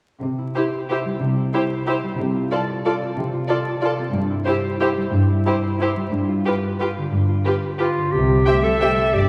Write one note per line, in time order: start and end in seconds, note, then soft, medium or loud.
0.21 0.47 C3 soft
0.21 1.19 C3 soft
0.38 0.88 E4 soft
0.55 0.63 E4 soft
0.55 1.53 G4 soft
0.55 0.63 G4 soft
0.55 0.63 C5 soft
0.73 1.69 C5 soft
0.89 1.36 E4 soft
0.89 0.98 E4 soft
0.89 0.97 G4 soft
0.89 0.97 C5 soft
1.05 2.02 G3 soft
1.20 2.17 C3 soft
1.20 1.47 C3 soft
1.37 1.86 E4 soft
1.53 1.62 E4 soft
1.53 2.20 G4 soft
1.53 1.62 G4 soft
1.53 1.61 C5 soft
1.70 4.63 C5 soft
1.86 1.94 E4 soft
1.86 2.20 E4 soft
1.86 1.95 G4 soft
1.86 1.96 C5 soft
2.03 2.20 G3 soft
2.18 3.17 C3 soft
2.18 2.44 C3 medium
2.34 2.85 F4 soft
2.51 2.59 F4 soft
2.51 2.60 A4 soft
2.51 3.48 A4 soft
2.51 2.59 D5 soft
2.69 3.66 D5 soft
2.84 2.94 F4 soft
2.84 3.32 F4 soft
2.84 2.92 A4 soft
2.84 2.93 D5 soft
3.02 3.98 C4 soft
3.17 3.42 C3 medium
3.17 4.16 C3 soft
3.33 3.82 F4 soft
3.48 3.57 F4 soft
3.48 3.56 A4 soft
3.48 4.15 A4 soft
3.48 3.56 D5 soft
3.67 4.16 D5 soft
3.81 3.90 F4 soft
3.81 4.15 F4 soft
3.81 3.92 A4 soft
3.81 3.89 D5 soft
3.99 6.14 C4 soft
4.14 5.12 G2 soft
4.14 4.39 G2 medium
4.30 4.80 E4 soft
4.45 4.54 E4 soft
4.45 4.55 G4 soft
4.45 5.45 G4 soft
4.45 4.53 C5 soft
4.64 5.62 C5 soft
4.80 4.88 E4 soft
4.80 5.28 E4 soft
4.80 4.89 G4 soft
4.80 4.88 C5 soft
4.97 5.95 G3 soft
5.13 6.11 G2 soft
5.13 5.39 G2 medium
5.29 5.79 E4 soft
5.45 5.53 E4 soft
5.45 6.44 G4 soft
5.45 5.54 G4 soft
5.45 5.55 C5 soft
5.63 6.14 C5 soft
5.80 5.88 E4 soft
5.80 6.14 E4 soft
5.80 5.89 G4 soft
5.80 5.89 C5 soft
5.96 8.28 G3 soft
6.12 6.38 G2 medium
6.12 7.11 G2 soft
6.29 6.79 F4 soft
6.45 6.54 F4 soft
6.45 7.44 G4 soft
6.45 6.53 G4 soft
6.45 6.54 B4 soft
6.63 7.63 B4 soft
6.79 6.88 F4 soft
6.79 7.27 F4 soft
6.79 6.88 G4 soft
6.79 6.87 B4 soft
6.98 7.97 D3 soft
7.11 7.38 G2 soft
7.11 8.15 G2 soft
7.28 7.80 F4 soft
7.45 7.55 F4 soft
7.45 9.29 G4 soft
7.45 7.54 G4 soft
7.45 7.53 B4 soft
7.64 8.16 B4 soft
7.79 8.13 F4 soft
7.79 7.88 F4 soft
7.79 8.16 F4 soft
7.79 7.88 G4 soft
7.79 7.87 B4 soft
7.98 8.16 D3 soft
8.12 8.41 C2 soft
8.12 8.41 C3 soft
8.12 9.15 C3 soft
8.12 8.65 G4 medium
8.30 8.64 G3 soft
8.46 8.77 A3 soft
8.46 8.55 C4 soft
8.46 8.55 G4 soft
8.46 9.10 E5 soft
8.46 8.55 E5 soft
8.46 8.54 G5 soft
8.63 8.97 G3 soft
8.63 9.15 A4 soft
8.80 9.10 A3 soft
8.80 8.88 C4 soft
8.80 8.89 G4 soft
8.80 8.89 E5 soft
8.80 8.89 G5 soft
8.98 9.29 G3 soft
9.13 9.29 G1 soft
9.13 9.29 G2 soft
9.13 9.29 G4 soft
9.13 9.29 D5 soft